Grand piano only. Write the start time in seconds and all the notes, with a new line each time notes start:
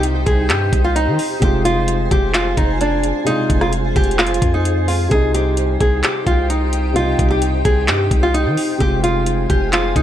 Already playing: C3 G3 D#4
1.40 C3 G#3
1.44 F4
3.24 C3 G#3
3.29 F4
5.09 C3 G3
5.14 D#4
6.93 C3 G3
6.98 D#4
8.78 C3 G#3
8.83 F4